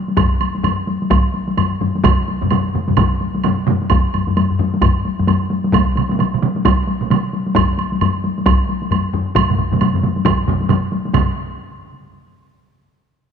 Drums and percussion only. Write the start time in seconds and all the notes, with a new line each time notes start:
0.08 taiko high
0.17 taiko, taiko low-mid, taiko high, high woodblock
0.41 taiko high, high woodblock
0.55 taiko high
0.64 taiko low-mid, taiko high, high woodblock
0.87 taiko high
1.02 taiko high
1.10 taiko, taiko high, high woodblock
1.34 taiko high
1.48 taiko high
1.57 taiko low-mid, taiko high, high woodblock
1.81 taiko low-mid, taiko high
1.95 taiko high
2.04 taiko, taiko low-mid, taiko mid, taiko high, high woodblock
2.28 taiko high
2.41 taiko low-mid, taiko mid, taiko high
2.51 taiko low-mid, taiko mid, taiko high, high woodblock
2.74 taiko low-mid, taiko mid
2.88 taiko low-mid, taiko mid, taiko high
2.97 taiko, taiko low-mid, taiko mid, taiko high, high woodblock
3.21 taiko high
3.35 taiko high
3.44 taiko low-mid, taiko mid, taiko high, high woodblock
3.67 taiko low-mid, taiko mid, taiko high
3.82 taiko high
3.90 taiko, taiko low-mid, taiko high, high woodblock
4.14 taiko low-mid, taiko high, high woodblock
4.27 taiko low-mid, taiko high
4.36 taiko low-mid, taiko high, high woodblock
4.50 taiko low-mid
4.59 taiko low-mid, taiko high
4.74 taiko high
4.82 taiko, taiko low-mid, taiko high, high woodblock
5.05 taiko high
5.19 taiko low-mid, taiko high
5.27 taiko low-mid, taiko high, high woodblock
5.50 taiko high
5.64 taiko high
5.73 taiko, taiko mid, taiko high, high woodblock
5.96 taiko mid, taiko high, high woodblock
6.09 taiko mid, taiko high
6.19 taiko mid, taiko high, high woodblock
6.34 taiko mid
6.42 taiko mid, taiko high
6.56 taiko high
6.65 taiko, taiko mid, taiko high, high woodblock
6.87 taiko high
7.02 taiko mid
7.10 taiko mid, taiko high, high woodblock
7.33 taiko high
7.46 taiko high
7.55 taiko, taiko low-mid, taiko high, high woodblock
7.78 taiko high, high woodblock
7.92 taiko high
8.01 taiko low-mid, taiko high, high woodblock
8.24 taiko high
8.38 taiko high
8.46 taiko, taiko high, high woodblock
8.69 taiko high
8.82 taiko high
8.91 taiko low-mid, taiko high, high woodblock
9.14 taiko low-mid, taiko high
9.35 taiko, taiko low-mid, taiko mid, taiko high, high woodblock
9.49 taiko low-mid, taiko mid
9.58 taiko low-mid, taiko mid
9.72 taiko low-mid, taiko mid, taiko high
9.81 taiko low-mid, taiko mid, taiko high, high woodblock
9.94 taiko low-mid, taiko mid
10.03 taiko low-mid, taiko mid, taiko high
10.16 taiko high
10.25 taiko, taiko low-mid, taiko mid, taiko high, high woodblock
10.47 taiko low-mid, taiko mid, taiko high
10.61 taiko high
10.69 taiko low-mid, taiko mid, taiko high, high woodblock
10.92 taiko high
11.05 taiko high
11.13 taiko, taiko low-mid, taiko mid, taiko high, high woodblock